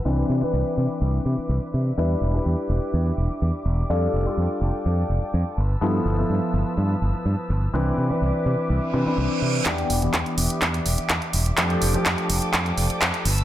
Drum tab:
HH |----------------|----------------|----------------|----------------|
CP |----------------|----------------|----------------|----------------|
BD |----------------|----------------|----------------|----------------|

HH |----------------|xxoxxxoxxxoxxxox|xxoxxxoxxxoxxxox|
CP |----------------|x---x---x---x---|x---x---x---x---|
BD |----------------|o---o---o---o---|o---o---o---o---|